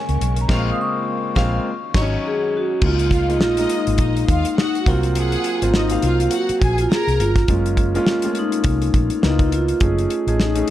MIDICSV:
0, 0, Header, 1, 8, 480
1, 0, Start_track
1, 0, Key_signature, -5, "major"
1, 0, Tempo, 581959
1, 411, Time_signature, 4, 2, 24, 8
1, 8827, End_track
2, 0, Start_track
2, 0, Title_t, "String section"
2, 0, Program_c, 0, 48
2, 0, Note_on_c, 0, 73, 92
2, 0, Note_on_c, 0, 85, 101
2, 373, Note_off_c, 0, 73, 0
2, 375, Note_off_c, 0, 85, 0
2, 407, Note_on_c, 0, 89, 101
2, 410, Note_on_c, 0, 77, 103
2, 579, Note_off_c, 0, 89, 0
2, 580, Note_off_c, 0, 77, 0
2, 1116, Note_on_c, 0, 89, 105
2, 1119, Note_on_c, 0, 77, 107
2, 1292, Note_off_c, 0, 89, 0
2, 1294, Note_off_c, 0, 77, 0
2, 1602, Note_on_c, 0, 85, 100
2, 1604, Note_on_c, 0, 73, 100
2, 1776, Note_off_c, 0, 85, 0
2, 1777, Note_off_c, 0, 73, 0
2, 2563, Note_on_c, 0, 77, 89
2, 2565, Note_on_c, 0, 65, 88
2, 2759, Note_off_c, 0, 77, 0
2, 2760, Note_off_c, 0, 65, 0
2, 2792, Note_on_c, 0, 63, 105
2, 2795, Note_on_c, 0, 75, 122
2, 3253, Note_off_c, 0, 63, 0
2, 3254, Note_off_c, 0, 75, 0
2, 3290, Note_on_c, 0, 63, 99
2, 3292, Note_on_c, 0, 75, 106
2, 3483, Note_off_c, 0, 63, 0
2, 3484, Note_off_c, 0, 75, 0
2, 3535, Note_on_c, 0, 77, 127
2, 3539, Note_on_c, 0, 65, 110
2, 3726, Note_off_c, 0, 77, 0
2, 3728, Note_off_c, 0, 65, 0
2, 3776, Note_on_c, 0, 66, 109
2, 3781, Note_on_c, 0, 78, 111
2, 4130, Note_off_c, 0, 66, 0
2, 4133, Note_off_c, 0, 78, 0
2, 4258, Note_on_c, 0, 68, 117
2, 4261, Note_on_c, 0, 78, 114
2, 4706, Note_off_c, 0, 68, 0
2, 4708, Note_off_c, 0, 78, 0
2, 4732, Note_on_c, 0, 63, 96
2, 4735, Note_on_c, 0, 75, 97
2, 4924, Note_off_c, 0, 63, 0
2, 4926, Note_off_c, 0, 75, 0
2, 4964, Note_on_c, 0, 65, 98
2, 4969, Note_on_c, 0, 77, 104
2, 5159, Note_off_c, 0, 65, 0
2, 5162, Note_off_c, 0, 77, 0
2, 5217, Note_on_c, 0, 66, 94
2, 5218, Note_on_c, 0, 78, 111
2, 5407, Note_off_c, 0, 66, 0
2, 5407, Note_off_c, 0, 78, 0
2, 5454, Note_on_c, 0, 68, 106
2, 5456, Note_on_c, 0, 80, 113
2, 5645, Note_off_c, 0, 68, 0
2, 5646, Note_off_c, 0, 80, 0
2, 5681, Note_on_c, 0, 70, 123
2, 5683, Note_on_c, 0, 82, 116
2, 6042, Note_off_c, 0, 70, 0
2, 6043, Note_off_c, 0, 82, 0
2, 8827, End_track
3, 0, Start_track
3, 0, Title_t, "Vibraphone"
3, 0, Program_c, 1, 11
3, 0, Note_on_c, 1, 80, 95
3, 294, Note_off_c, 1, 80, 0
3, 339, Note_on_c, 1, 82, 99
3, 428, Note_off_c, 1, 82, 0
3, 440, Note_on_c, 1, 85, 98
3, 556, Note_off_c, 1, 85, 0
3, 584, Note_on_c, 1, 87, 88
3, 622, Note_off_c, 1, 87, 0
3, 670, Note_on_c, 1, 85, 102
3, 1588, Note_off_c, 1, 85, 0
3, 1871, Note_on_c, 1, 68, 96
3, 2108, Note_off_c, 1, 68, 0
3, 2119, Note_on_c, 1, 66, 97
3, 2352, Note_off_c, 1, 66, 0
3, 2357, Note_on_c, 1, 65, 95
3, 2823, Note_off_c, 1, 65, 0
3, 2833, Note_on_c, 1, 65, 110
3, 3067, Note_on_c, 1, 63, 100
3, 3069, Note_off_c, 1, 65, 0
3, 3773, Note_off_c, 1, 63, 0
3, 3783, Note_on_c, 1, 63, 99
3, 3867, Note_off_c, 1, 63, 0
3, 3962, Note_on_c, 1, 66, 82
3, 4011, Note_off_c, 1, 66, 0
3, 4025, Note_on_c, 1, 65, 105
3, 4759, Note_off_c, 1, 65, 0
3, 4759, Note_on_c, 1, 63, 104
3, 4969, Note_off_c, 1, 63, 0
3, 4990, Note_on_c, 1, 65, 95
3, 5227, Note_off_c, 1, 65, 0
3, 5242, Note_on_c, 1, 66, 106
3, 5617, Note_off_c, 1, 66, 0
3, 5618, Note_on_c, 1, 65, 104
3, 5708, Note_off_c, 1, 65, 0
3, 5722, Note_on_c, 1, 68, 103
3, 5938, Note_on_c, 1, 65, 95
3, 5953, Note_off_c, 1, 68, 0
3, 6920, Note_on_c, 1, 63, 96
3, 6923, Note_off_c, 1, 65, 0
3, 7636, Note_off_c, 1, 63, 0
3, 7645, Note_on_c, 1, 63, 94
3, 7801, Note_on_c, 1, 64, 82
3, 7825, Note_off_c, 1, 63, 0
3, 7850, Note_off_c, 1, 64, 0
3, 7872, Note_on_c, 1, 65, 95
3, 8548, Note_off_c, 1, 65, 0
3, 8592, Note_on_c, 1, 63, 98
3, 8827, Note_off_c, 1, 63, 0
3, 8827, End_track
4, 0, Start_track
4, 0, Title_t, "Grand piano"
4, 0, Program_c, 2, 0
4, 0, Control_c, 2, 64, 127
4, 0, Note_on_c, 2, 56, 75
4, 0, Note_on_c, 2, 58, 62
4, 0, Note_on_c, 2, 60, 59
4, 0, Note_on_c, 2, 61, 66
4, 0, Note_on_c, 2, 65, 86
4, 399, Note_off_c, 2, 56, 0
4, 399, Note_on_c, 2, 56, 103
4, 400, Note_off_c, 2, 58, 0
4, 400, Note_on_c, 2, 58, 100
4, 409, Note_off_c, 2, 60, 0
4, 409, Note_on_c, 2, 60, 98
4, 413, Note_off_c, 2, 65, 0
4, 413, Note_on_c, 2, 65, 85
4, 420, Control_c, 2, 64, 0
4, 425, Note_off_c, 2, 61, 0
4, 571, Control_c, 2, 64, 127
4, 574, Note_off_c, 2, 56, 0
4, 574, Note_off_c, 2, 58, 0
4, 580, Note_off_c, 2, 60, 0
4, 582, Note_off_c, 2, 65, 0
4, 1118, Note_on_c, 2, 56, 100
4, 1121, Note_on_c, 2, 58, 96
4, 1125, Note_on_c, 2, 60, 102
4, 1125, Note_on_c, 2, 65, 100
4, 1293, Note_off_c, 2, 56, 0
4, 1295, Note_off_c, 2, 58, 0
4, 1298, Note_off_c, 2, 60, 0
4, 1298, Note_off_c, 2, 65, 0
4, 1382, Control_c, 2, 64, 0
4, 1505, Control_c, 2, 64, 127
4, 1603, Note_on_c, 2, 54, 101
4, 1617, Note_on_c, 2, 63, 99
4, 1661, Note_on_c, 2, 61, 105
4, 1776, Note_off_c, 2, 54, 0
4, 1784, Note_off_c, 2, 63, 0
4, 1810, Note_off_c, 2, 61, 0
4, 2328, Note_on_c, 2, 56, 74
4, 2333, Note_on_c, 2, 58, 66
4, 2337, Note_on_c, 2, 63, 63
4, 2338, Note_on_c, 2, 65, 82
4, 2341, Control_c, 2, 64, 0
4, 2510, Control_c, 2, 64, 127
4, 2583, Note_off_c, 2, 56, 0
4, 2586, Note_off_c, 2, 58, 0
4, 2588, Note_off_c, 2, 63, 0
4, 2588, Note_off_c, 2, 65, 0
4, 2707, Note_on_c, 2, 56, 71
4, 2709, Note_on_c, 2, 58, 60
4, 2714, Note_on_c, 2, 63, 65
4, 2718, Note_on_c, 2, 65, 78
4, 2865, Note_off_c, 2, 56, 0
4, 2866, Note_off_c, 2, 58, 0
4, 2869, Note_off_c, 2, 63, 0
4, 2870, Note_off_c, 2, 65, 0
4, 2948, Note_on_c, 2, 56, 78
4, 2954, Note_on_c, 2, 58, 67
4, 2955, Note_on_c, 2, 63, 73
4, 2961, Note_on_c, 2, 65, 77
4, 3612, Note_off_c, 2, 56, 0
4, 3616, Note_off_c, 2, 58, 0
4, 3616, Note_off_c, 2, 63, 0
4, 3619, Note_off_c, 2, 65, 0
4, 4013, Note_on_c, 2, 54, 76
4, 4013, Note_on_c, 2, 58, 78
4, 4020, Note_on_c, 2, 60, 76
4, 4021, Control_c, 2, 64, 0
4, 4022, Note_on_c, 2, 65, 85
4, 4153, Control_c, 2, 64, 127
4, 4492, Note_off_c, 2, 54, 0
4, 4492, Note_off_c, 2, 58, 0
4, 4496, Note_off_c, 2, 60, 0
4, 4497, Note_off_c, 2, 65, 0
4, 4628, Note_on_c, 2, 54, 66
4, 4633, Note_on_c, 2, 58, 66
4, 4637, Note_on_c, 2, 60, 69
4, 4645, Note_on_c, 2, 65, 82
4, 4785, Note_off_c, 2, 54, 0
4, 4788, Note_off_c, 2, 58, 0
4, 4790, Note_off_c, 2, 60, 0
4, 4794, Note_off_c, 2, 65, 0
4, 4867, Note_on_c, 2, 54, 79
4, 4871, Note_on_c, 2, 58, 66
4, 4876, Note_on_c, 2, 60, 69
4, 4881, Note_on_c, 2, 77, 87
4, 5532, Note_off_c, 2, 54, 0
4, 5534, Note_off_c, 2, 58, 0
4, 5537, Note_off_c, 2, 60, 0
4, 5539, Note_off_c, 2, 77, 0
4, 6172, Note_on_c, 2, 56, 74
4, 6175, Note_on_c, 2, 58, 67
4, 6178, Note_on_c, 2, 61, 69
4, 6183, Control_c, 2, 64, 0
4, 6184, Note_on_c, 2, 65, 80
4, 6305, Control_c, 2, 64, 127
4, 6425, Note_off_c, 2, 56, 0
4, 6426, Note_off_c, 2, 58, 0
4, 6428, Note_off_c, 2, 61, 0
4, 6431, Note_off_c, 2, 65, 0
4, 6552, Note_on_c, 2, 56, 85
4, 6556, Note_on_c, 2, 58, 81
4, 6561, Note_on_c, 2, 61, 80
4, 6566, Note_on_c, 2, 65, 106
4, 6707, Note_off_c, 2, 56, 0
4, 6709, Note_off_c, 2, 58, 0
4, 6712, Note_off_c, 2, 61, 0
4, 6714, Note_off_c, 2, 65, 0
4, 6791, Note_on_c, 2, 56, 80
4, 6796, Note_on_c, 2, 57, 62
4, 6798, Note_on_c, 2, 61, 74
4, 6804, Note_on_c, 2, 65, 88
4, 6838, Note_off_c, 2, 57, 0
4, 6849, Note_on_c, 2, 58, 65
4, 7454, Note_off_c, 2, 56, 0
4, 7458, Note_off_c, 2, 61, 0
4, 7460, Note_off_c, 2, 65, 0
4, 7483, Note_off_c, 2, 58, 0
4, 7605, Note_on_c, 2, 58, 74
4, 7611, Note_on_c, 2, 59, 73
4, 7612, Note_on_c, 2, 63, 71
4, 7616, Note_on_c, 2, 64, 71
4, 7621, Control_c, 2, 64, 0
4, 7673, Note_on_c, 2, 65, 80
4, 7676, Note_off_c, 2, 64, 0
4, 7752, Control_c, 2, 64, 127
4, 8007, Note_off_c, 2, 58, 0
4, 8010, Note_off_c, 2, 59, 0
4, 8010, Note_off_c, 2, 63, 0
4, 8041, Note_off_c, 2, 65, 0
4, 8084, Note_on_c, 2, 57, 66
4, 8087, Note_on_c, 2, 61, 68
4, 8092, Note_on_c, 2, 63, 63
4, 8094, Note_on_c, 2, 68, 80
4, 8101, Control_c, 2, 64, 0
4, 8256, Control_c, 2, 64, 127
4, 8341, Note_off_c, 2, 57, 0
4, 8342, Note_off_c, 2, 61, 0
4, 8345, Note_off_c, 2, 63, 0
4, 8346, Note_off_c, 2, 68, 0
4, 8472, Note_on_c, 2, 57, 68
4, 8474, Note_on_c, 2, 61, 59
4, 8475, Note_on_c, 2, 63, 63
4, 8481, Note_on_c, 2, 68, 86
4, 8627, Note_off_c, 2, 57, 0
4, 8628, Note_off_c, 2, 61, 0
4, 8628, Note_off_c, 2, 63, 0
4, 8632, Note_off_c, 2, 68, 0
4, 8697, Note_on_c, 2, 57, 77
4, 8701, Note_on_c, 2, 61, 69
4, 8705, Note_on_c, 2, 63, 70
4, 8713, Note_on_c, 2, 68, 87
4, 8827, Note_off_c, 2, 57, 0
4, 8827, Note_off_c, 2, 61, 0
4, 8827, Note_off_c, 2, 63, 0
4, 8827, Note_off_c, 2, 68, 0
4, 8827, End_track
5, 0, Start_track
5, 0, Title_t, "String machine"
5, 0, Program_c, 3, 50
5, 0, Note_on_c, 3, 49, 71
5, 0, Note_on_c, 3, 56, 73
5, 0, Note_on_c, 3, 58, 74
5, 0, Note_on_c, 3, 61, 89
5, 393, Note_off_c, 3, 61, 0
5, 401, Note_on_c, 3, 65, 78
5, 1344, Note_off_c, 3, 58, 0
5, 1346, Note_off_c, 3, 49, 0
5, 1357, Note_off_c, 3, 65, 0
5, 1366, Note_on_c, 3, 61, 81
5, 1367, Note_on_c, 3, 51, 83
5, 1369, Note_on_c, 3, 66, 85
5, 2301, Note_off_c, 3, 56, 0
5, 2319, Note_off_c, 3, 61, 0
5, 2320, Note_off_c, 3, 51, 0
5, 2321, Note_off_c, 3, 66, 0
5, 8827, End_track
6, 0, Start_track
6, 0, Title_t, "Fingered electric bass"
6, 0, Program_c, 4, 33
6, 72, Note_on_c, 4, 37, 92
6, 155, Note_off_c, 4, 37, 0
6, 171, Note_on_c, 4, 35, 98
6, 371, Note_off_c, 4, 35, 0
6, 409, Note_on_c, 4, 34, 104
6, 580, Note_off_c, 4, 34, 0
6, 1130, Note_on_c, 4, 34, 108
6, 1301, Note_off_c, 4, 34, 0
6, 1609, Note_on_c, 4, 32, 103
6, 1780, Note_off_c, 4, 32, 0
6, 2328, Note_on_c, 4, 37, 117
6, 2810, Note_off_c, 4, 37, 0
6, 2810, Note_on_c, 4, 34, 88
6, 3011, Note_off_c, 4, 34, 0
6, 3194, Note_on_c, 4, 32, 86
6, 3290, Note_off_c, 4, 32, 0
6, 3290, Note_on_c, 4, 34, 81
6, 3490, Note_off_c, 4, 34, 0
6, 3537, Note_on_c, 4, 39, 101
6, 3651, Note_off_c, 4, 39, 0
6, 4015, Note_on_c, 4, 36, 102
6, 4413, Note_off_c, 4, 36, 0
6, 4635, Note_on_c, 4, 32, 87
6, 4917, Note_off_c, 4, 32, 0
6, 4973, Note_on_c, 4, 36, 87
6, 5172, Note_off_c, 4, 36, 0
6, 5459, Note_on_c, 4, 34, 94
6, 5655, Note_off_c, 4, 34, 0
6, 5834, Note_on_c, 4, 36, 89
6, 5917, Note_off_c, 4, 36, 0
6, 5935, Note_on_c, 4, 31, 101
6, 6133, Note_off_c, 4, 31, 0
6, 6177, Note_on_c, 4, 30, 108
6, 6574, Note_off_c, 4, 30, 0
6, 7131, Note_on_c, 4, 36, 85
6, 7331, Note_off_c, 4, 36, 0
6, 7378, Note_on_c, 4, 34, 101
6, 7491, Note_off_c, 4, 34, 0
6, 7621, Note_on_c, 4, 37, 95
6, 8017, Note_off_c, 4, 37, 0
6, 8094, Note_on_c, 4, 30, 114
6, 8293, Note_off_c, 4, 30, 0
6, 8469, Note_on_c, 4, 33, 91
6, 8753, Note_off_c, 4, 33, 0
6, 8827, End_track
7, 0, Start_track
7, 0, Title_t, "Muted fingered electric bass strokes"
7, 5356, Note_on_c, 9, 29, 47
7, 5438, Note_off_c, 9, 29, 0
7, 8827, End_track
8, 0, Start_track
8, 0, Title_t, "Drums"
8, 72, Note_on_c, 9, 42, 43
8, 155, Note_off_c, 9, 42, 0
8, 177, Note_on_c, 9, 42, 80
8, 259, Note_off_c, 9, 42, 0
8, 301, Note_on_c, 9, 42, 51
8, 383, Note_off_c, 9, 42, 0
8, 404, Note_on_c, 9, 36, 110
8, 404, Note_on_c, 9, 49, 82
8, 409, Note_on_c, 9, 38, 97
8, 486, Note_off_c, 9, 49, 0
8, 487, Note_off_c, 9, 36, 0
8, 492, Note_off_c, 9, 38, 0
8, 1124, Note_on_c, 9, 36, 105
8, 1129, Note_on_c, 9, 38, 99
8, 1207, Note_off_c, 9, 36, 0
8, 1212, Note_off_c, 9, 38, 0
8, 1603, Note_on_c, 9, 49, 77
8, 1604, Note_on_c, 9, 36, 114
8, 1608, Note_on_c, 9, 38, 109
8, 1685, Note_off_c, 9, 49, 0
8, 1686, Note_off_c, 9, 36, 0
8, 1691, Note_off_c, 9, 38, 0
8, 2321, Note_on_c, 9, 49, 93
8, 2325, Note_on_c, 9, 36, 106
8, 2404, Note_off_c, 9, 49, 0
8, 2407, Note_off_c, 9, 36, 0
8, 2468, Note_on_c, 9, 42, 50
8, 2550, Note_off_c, 9, 42, 0
8, 2564, Note_on_c, 9, 36, 90
8, 2574, Note_on_c, 9, 42, 77
8, 2647, Note_off_c, 9, 36, 0
8, 2657, Note_off_c, 9, 42, 0
8, 2719, Note_on_c, 9, 42, 46
8, 2802, Note_off_c, 9, 42, 0
8, 2810, Note_on_c, 9, 38, 106
8, 2892, Note_off_c, 9, 38, 0
8, 2945, Note_on_c, 9, 42, 67
8, 3028, Note_off_c, 9, 42, 0
8, 3047, Note_on_c, 9, 42, 69
8, 3130, Note_off_c, 9, 42, 0
8, 3191, Note_on_c, 9, 42, 54
8, 3274, Note_off_c, 9, 42, 0
8, 3281, Note_on_c, 9, 42, 85
8, 3288, Note_on_c, 9, 36, 100
8, 3364, Note_off_c, 9, 42, 0
8, 3370, Note_off_c, 9, 36, 0
8, 3436, Note_on_c, 9, 42, 52
8, 3518, Note_off_c, 9, 42, 0
8, 3534, Note_on_c, 9, 36, 91
8, 3539, Note_on_c, 9, 42, 75
8, 3617, Note_off_c, 9, 36, 0
8, 3621, Note_off_c, 9, 42, 0
8, 3669, Note_on_c, 9, 42, 59
8, 3752, Note_off_c, 9, 42, 0
8, 3779, Note_on_c, 9, 38, 113
8, 3862, Note_off_c, 9, 38, 0
8, 3919, Note_on_c, 9, 42, 44
8, 4001, Note_off_c, 9, 42, 0
8, 4012, Note_on_c, 9, 36, 106
8, 4020, Note_on_c, 9, 42, 77
8, 4094, Note_off_c, 9, 36, 0
8, 4102, Note_off_c, 9, 42, 0
8, 4151, Note_on_c, 9, 42, 49
8, 4234, Note_off_c, 9, 42, 0
8, 4251, Note_on_c, 9, 42, 93
8, 4334, Note_off_c, 9, 42, 0
8, 4389, Note_on_c, 9, 42, 44
8, 4472, Note_off_c, 9, 42, 0
8, 4489, Note_on_c, 9, 42, 76
8, 4571, Note_off_c, 9, 42, 0
8, 4635, Note_on_c, 9, 42, 53
8, 4718, Note_off_c, 9, 42, 0
8, 4731, Note_on_c, 9, 38, 116
8, 4814, Note_off_c, 9, 38, 0
8, 4863, Note_on_c, 9, 42, 66
8, 4945, Note_off_c, 9, 42, 0
8, 4969, Note_on_c, 9, 42, 75
8, 5051, Note_off_c, 9, 42, 0
8, 5114, Note_on_c, 9, 42, 55
8, 5196, Note_off_c, 9, 42, 0
8, 5202, Note_on_c, 9, 42, 92
8, 5285, Note_off_c, 9, 42, 0
8, 5353, Note_on_c, 9, 42, 52
8, 5436, Note_off_c, 9, 42, 0
8, 5456, Note_on_c, 9, 36, 94
8, 5461, Note_on_c, 9, 42, 82
8, 5539, Note_off_c, 9, 36, 0
8, 5543, Note_off_c, 9, 42, 0
8, 5592, Note_on_c, 9, 42, 58
8, 5675, Note_off_c, 9, 42, 0
8, 5705, Note_on_c, 9, 38, 120
8, 5788, Note_off_c, 9, 38, 0
8, 5842, Note_on_c, 9, 42, 44
8, 5925, Note_off_c, 9, 42, 0
8, 5939, Note_on_c, 9, 42, 77
8, 6021, Note_off_c, 9, 42, 0
8, 6068, Note_on_c, 9, 36, 86
8, 6071, Note_on_c, 9, 42, 52
8, 6078, Note_on_c, 9, 38, 36
8, 6150, Note_off_c, 9, 36, 0
8, 6154, Note_off_c, 9, 42, 0
8, 6160, Note_off_c, 9, 38, 0
8, 6170, Note_on_c, 9, 42, 88
8, 6173, Note_on_c, 9, 36, 113
8, 6253, Note_off_c, 9, 42, 0
8, 6256, Note_off_c, 9, 36, 0
8, 6316, Note_on_c, 9, 42, 48
8, 6398, Note_off_c, 9, 42, 0
8, 6410, Note_on_c, 9, 36, 90
8, 6413, Note_on_c, 9, 42, 77
8, 6493, Note_off_c, 9, 36, 0
8, 6495, Note_off_c, 9, 42, 0
8, 6558, Note_on_c, 9, 42, 49
8, 6640, Note_off_c, 9, 42, 0
8, 6652, Note_on_c, 9, 38, 127
8, 6734, Note_off_c, 9, 38, 0
8, 6782, Note_on_c, 9, 42, 67
8, 6864, Note_off_c, 9, 42, 0
8, 6886, Note_on_c, 9, 42, 70
8, 6969, Note_off_c, 9, 42, 0
8, 7029, Note_on_c, 9, 42, 57
8, 7112, Note_off_c, 9, 42, 0
8, 7124, Note_on_c, 9, 42, 93
8, 7130, Note_on_c, 9, 36, 105
8, 7206, Note_off_c, 9, 42, 0
8, 7213, Note_off_c, 9, 36, 0
8, 7272, Note_on_c, 9, 42, 55
8, 7354, Note_off_c, 9, 42, 0
8, 7373, Note_on_c, 9, 36, 101
8, 7374, Note_on_c, 9, 42, 76
8, 7455, Note_off_c, 9, 36, 0
8, 7457, Note_off_c, 9, 42, 0
8, 7506, Note_on_c, 9, 42, 53
8, 7589, Note_off_c, 9, 42, 0
8, 7613, Note_on_c, 9, 38, 117
8, 7696, Note_off_c, 9, 38, 0
8, 7747, Note_on_c, 9, 36, 97
8, 7751, Note_on_c, 9, 42, 51
8, 7830, Note_off_c, 9, 36, 0
8, 7833, Note_off_c, 9, 42, 0
8, 7855, Note_on_c, 9, 42, 77
8, 7937, Note_off_c, 9, 42, 0
8, 7988, Note_on_c, 9, 42, 45
8, 8070, Note_off_c, 9, 42, 0
8, 8087, Note_on_c, 9, 42, 92
8, 8091, Note_on_c, 9, 36, 117
8, 8169, Note_off_c, 9, 42, 0
8, 8173, Note_off_c, 9, 36, 0
8, 8235, Note_on_c, 9, 42, 45
8, 8318, Note_off_c, 9, 42, 0
8, 8334, Note_on_c, 9, 42, 73
8, 8416, Note_off_c, 9, 42, 0
8, 8476, Note_on_c, 9, 42, 50
8, 8559, Note_off_c, 9, 42, 0
8, 8575, Note_on_c, 9, 38, 107
8, 8657, Note_off_c, 9, 38, 0
8, 8705, Note_on_c, 9, 42, 67
8, 8788, Note_off_c, 9, 42, 0
8, 8827, End_track
0, 0, End_of_file